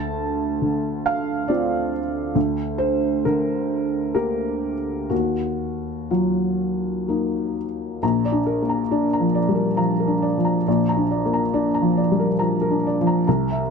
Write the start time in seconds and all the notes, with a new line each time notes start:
Already playing: D2 A5
0.62 D3
1.06 F5
1.48 C4 F4 D5
2.35 D2
2.78 C5
3.25 D3 A#4
4.14 A#3 G4 A#4
5.10 D#2 F#4
6.10 F#3 F4
7.08 A#3 D#4
8.03 A#1 A#5
8.25 D5
8.32 D4
8.46 A#4
8.62 A#3
8.69 A#5
8.91 D4 D5
9.13 A#5
9.20 F3
9.35 D5
9.49 G3
9.55 A#4
9.77 F3 A#5
10.00 A#4
10.07 D4
10.22 D5
10.38 F3
10.45 A#5
10.67 A#1 D5
10.89 A#5
10.97 D4
11.11 D5
11.25 A#3
11.33 A#5
11.54 D4 D5
11.74 A#5
11.81 F3
11.97 D5
12.11 G3
12.20 A#4
12.39 F3 A#5
12.61 A#4
12.70 D4
12.87 D5
13.01 F3
13.07 A#5
13.27 C2 A#5
13.51 E5